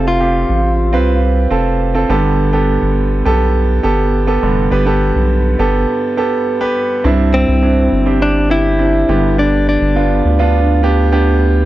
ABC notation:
X:1
M:4/4
L:1/16
Q:1/4=103
K:Gmix
V:1 name="Clean electric guitar"
F8 z8 | z16 | z16 | z2 C6 D2 E6 |
D2 D8 z6 |]
V:2 name="Grand piano"
z [CFG]4 z [CFB]3 z [CFA]2 z [CFA] [B,GA]2 | z [B,GA]4 z [B,GA]3 z [B,GA]2 z [B,GA]2 z | [B,GB] [B,GA]4 z [B,GA]3 z [B,GA]2 z [B,GB]2 z | [CDE]3 z [CDE]2 z [CDG]2 z [CDG]2 [CDE]2 [B,DG]2- |
[B,DG]3 z [B,DF]2 z [B,DF]2 z [B,DG]2 [B,DG]3 z |]
V:3 name="Grand piano" clef=bass
C,4 z8 z2 [G,,D,]2- | [G,,D,]4 z8 z2 [G,,D,]2- | [G,,D,]4 z12 | G,,6 z8 [G,,D,]2- |
[G,,D,]4 z12 |]
V:4 name="Analog synth bass" clef=bass
F,,,3 A,,,3 C,,4 F,,,4 G,,,2- | G,,,3 G,,,3 B,,,4 G,,,4 F,,,2 | G,,,3 B,,,3 G,,,2 z8 | C,,3 C,,3 G,,,8 G,,,2- |
G,,,3 G,,,3 D,,8- D,,2 |]